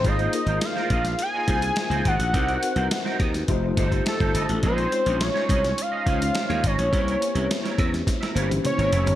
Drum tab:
HH |xxxxx-xxx-xxxxxx|xxxxx-xxx-xxxxxx|xxxxx-xxx-xxxxxx|xxxxxxxxxxxxxxxx|
SD |----oo-o----o---|----oo-o----o---|----oo-o----o---|----oo-ooo------|
T1 |----------------|----------------|----------------|-----------o----|
T2 |----------------|----------------|----------------|------------o---|
FT |----------------|----------------|----------------|--------------oo|
BD |o-----o---o---o-|o-----o-o-oo-o--|o-----o---o---o-|o-----o-o-------|